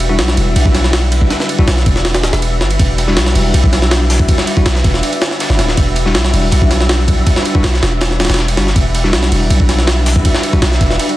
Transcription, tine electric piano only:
0.09 1.56 G3 medium
0.09 1.56 D4 medium
0.09 1.56 E4 medium
0.09 1.56 F#4 loud
1.59 1.68 G3 medium
1.59 1.68 D4 medium
1.59 1.68 E4 medium
1.59 1.68 F#4 medium
3.08 4.54 G3 medium
3.08 4.54 D4 medium
3.08 4.54 E4 medium
3.08 4.54 F#4 medium
4.57 4.66 G3 medium
4.57 4.66 D4 medium
4.57 4.66 E4 medium
4.57 4.66 F#4 medium
6.06 7.53 G3 medium
6.06 7.53 D4 medium
6.06 7.53 E4 medium
6.06 7.53 F#4 medium
7.55 7.64 G3 medium
7.55 7.64 D4 medium
7.55 7.64 E4 medium
7.55 7.64 F#4 medium
8.20 8.30 G3 medium
8.20 8.30 D4 medium
8.20 8.30 E4 medium
8.20 8.30 F#4 medium
8.57 8.67 G3 medium
8.57 8.67 D4 medium
8.57 8.67 E4 medium
8.57 8.67 F#4 loud
9.04 10.51 G3 medium
9.04 10.51 D4 medium
9.04 10.51 E4 medium
9.04 10.51 F#4 medium
10.53 10.62 G3 medium
10.53 10.62 D4 medium
10.53 10.62 E4 medium
10.53 10.62 F#4 medium

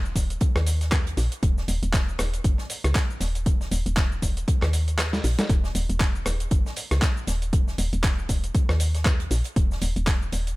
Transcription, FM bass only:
0.00 0.12 D#1 loud
0.16 0.36 D#1 medium
0.56 1.14 D#2 loud
1.17 1.29 A#1 loud
1.43 1.63 D#1 loud
1.68 1.80 D#1 loud
1.83 2.15 D#1 loud
2.19 2.40 D#1 medium
2.44 2.56 F#1 medium
2.84 2.93 C#2 loud
3.21 3.68 D#1 medium
3.71 3.83 D#1 loud
3.86 4.19 D#1 loud
4.22 4.43 D#1 medium
4.62 5.20 D#2 medium
5.24 5.35 A#1 loud
5.50 5.70 D#1 loud
5.75 5.86 D#1 loud
5.89 6.22 D#1 loud
6.26 6.47 D#1 medium
6.51 6.63 F#1 medium
6.91 7.00 C#2 loud
7.27 7.75 D#1 loud
7.78 7.90 D#1 loud
7.93 8.25 D#1 loud
8.29 8.50 D#1 medium
8.69 9.27 D#2 medium
9.31 9.42 A#1 loud
9.56 9.77 D#1 loud
9.82 9.93 D#1 loud
9.96 10.29 D#1 loud
10.33 10.53 D#1 medium

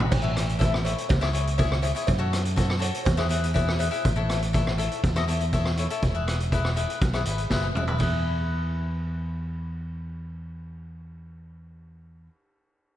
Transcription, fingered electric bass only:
0.12 0.93 A1 medium
1.10 1.92 C#2 medium
2.08 2.90 F#2 medium
3.06 3.88 E2 medium
4.05 4.87 A1 medium
5.04 5.86 E2 medium
6.02 6.85 E1 medium
7.02 7.22 B1 medium
7.25 7.48 G#1 medium
7.50 7.73 F#1 medium
7.75 7.97 E1 medium
8.00 12.28 E2 medium

